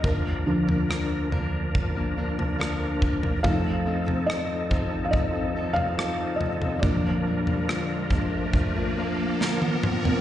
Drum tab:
SD |----r-------r---|----r-------r---|----r-------o---|
T1 |----------------|----------------|-------------o--|
T2 |----------------|----------------|--------------o-|
FT |o--o--o-o--o--oo|o--o--o-o--o--oo|o--o--o-o------o|
BD |o-------o-----o-|o-----o-o-------|o-----o-o-------|